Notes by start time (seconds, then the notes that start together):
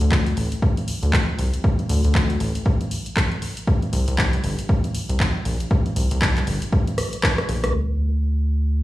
0.01 D2, closed hi-hat
0.11 D2, kick, clap
0.26 closed hi-hat
0.37 A1, open hi-hat
0.52 closed hi-hat
0.62 kick
0.77 closed hi-hat
0.88 open hi-hat
1.03 D2, closed hi-hat
1.13 kick, clap
1.39 C2, open hi-hat
1.54 closed hi-hat
1.64 kick
1.79 closed hi-hat
1.89 D2, open hi-hat
2.04 D2, closed hi-hat
2.15 D2, kick, clap
2.30 closed hi-hat
2.40 A1, open hi-hat
2.55 closed hi-hat
2.66 kick
2.81 closed hi-hat
2.91 open hi-hat
3.06 closed hi-hat
3.17 kick, clap
3.32 closed hi-hat
3.42 open hi-hat
3.57 closed hi-hat
3.67 kick
3.82 closed hi-hat
3.93 C2, open hi-hat
4.08 C2, closed hi-hat
4.18 C2, kick, clap
4.33 closed hi-hat
4.44 G1, open hi-hat
4.59 closed hi-hat
4.69 kick
4.84 closed hi-hat
4.95 open hi-hat
5.09 C2, closed hi-hat
5.20 kick, clap
5.45 A#1, open hi-hat
5.60 closed hi-hat
5.71 kick
5.86 closed hi-hat
5.96 C2, open hi-hat
6.11 C2, closed hi-hat
6.22 C2, kick, clap
6.37 clap, closed hi-hat
6.47 G1, open hi-hat
6.62 closed hi-hat
6.72 kick
6.87 closed hi-hat
6.98 cross-stick, open hi-hat
7.13 closed hi-hat
7.23 kick, cross-stick, clap
7.38 cross-stick, closed hi-hat
7.49 A#1, open hi-hat
7.64 C2, cross-stick, closed hi-hat
7.74 D2
7.89 closed hi-hat
8.15 closed hi-hat
8.40 closed hi-hat
8.65 closed hi-hat